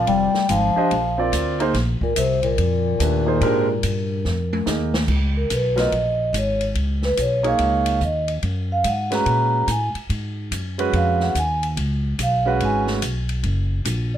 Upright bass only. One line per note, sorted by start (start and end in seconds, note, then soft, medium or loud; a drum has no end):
0.06 0.32 F1 medium
0.34 muted upright bass stroke soft
0.49 0.74 G#1 medium
0.76 muted upright bass stroke soft
0.91 1.32 A#1 medium
1.32 1.73 D2 medium
1.74 1.99 A#1 medium
2.01 muted upright bass stroke soft
2.17 2.57 C2 medium
2.58 2.99 F2 medium
3.00 3.40 D#2 medium
3.41 3.82 G#2 medium
3.83 4.24 G2 medium
4.25 4.66 F2 medium
4.67 5.07 D#2 medium
5.08 5.49 C#2 medium
5.50 5.91 B1 medium
5.92 6.32 A#1 medium
6.33 6.74 G#1 medium
6.75 7.16 C#2 medium
7.17 7.58 B1 medium
7.59 8.00 C#2 medium
8.01 8.42 D#2 medium
8.43 8.83 F#2 medium
8.84 9.25 G#2 medium
9.26 9.67 A#2 medium
9.68 9.93 A2 medium
9.95 muted upright bass stroke soft
10.10 10.50 G#2 medium
10.51 10.92 F#2 medium
10.93 11.34 F2 medium
11.35 11.76 D#2 medium
11.77 12.18 C#2 medium
12.19 12.59 B1 medium
12.61 13.01 G#1 medium
13.02 13.43 B1 medium
13.43 13.84 F#1 medium
13.85 14.18 A#1 medium